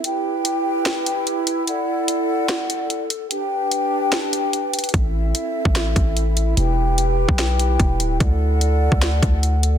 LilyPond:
<<
  \new Staff \with { instrumentName = "Flute section" } { \time 4/4 \key e \minor \tempo 4 = 147 << { <g' b' g''>1 | <a' d'' fis''>1 | <g' b' g''>1 | <e' a' e''>1 |
<g' b' g''>1 | <a' d'' fis''>1 | } \\ { e'1~ | e'1 | d'1 | c'1 |
r1 | r1 | } >> }
  \new Staff \with { instrumentName = "808-style bass" } { \clef bass \time 4/4 \key e \minor r1 | r1 | r1 | a,,4 r8. a,,8. a,,4. |
e,,4.~ e,,16 b,,4~ b,,16 e,,8 d,,8 | d,4.~ d,16 d,8. d,4. | }
  \new DrumStaff \with { instrumentName = "Drums" } \drummode { \time 4/4 hh4 hh4 <hh sn>8 hh8 hh8 hh8 | hh4 hh4 <hh sn>8 hh8 hh8 hh8 | hh4 hh4 <hh sn>8 hh8 hh8 hh32 hh32 hh32 hh32 | <hh bd>4 hh8. bd16 <hh sn>8 <hh bd>8 hh8 hh8 |
hh4 hh8. bd16 <hh sn>8 hh8 <hh bd>8 hh8 | <hh bd>4 hh8. bd16 <hh sn>8 <hh bd>8 hh8 hh8 | }
>>